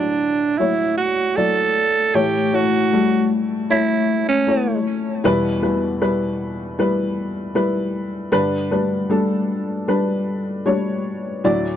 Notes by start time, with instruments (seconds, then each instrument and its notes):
Already playing: upright piano D2 A2 F#3 E4 D5, alto saxophone D4
0.58 upright piano F#3 E4 C#5, alto saxophone E4
0.98 alto saxophone F#4
1.37 upright piano F#3 E4 D5, alto saxophone A4
2.14 upright piano A2 E3 A3 E4 C#5, alto saxophone G4
2.53 upright piano A3 E4 C#5, alto saxophone F#4
2.92 upright piano G3 A3 E4
3.70 upright piano A3 E4 C#5, alto saxophone E4
4.29 alto saxophone C#4
4.47 upright piano A3 E4 C#5
5.24 upright piano E2 B2 G3 E4 B4
5.62 upright piano G3 E4 B4
6.01 upright piano G3 E4 B4
6.79 upright piano G3 E4 B4
7.55 upright piano G3 E4 B4
8.32 upright piano G2 D3 G3 D4 B4
8.71 upright piano G3 D4 B4
9.10 upright piano G3 D4 A4
9.88 upright piano G3 D4 B4
10.66 upright piano G3 D4 C#5
11.44 upright piano D2 A2 F#3 E4 D5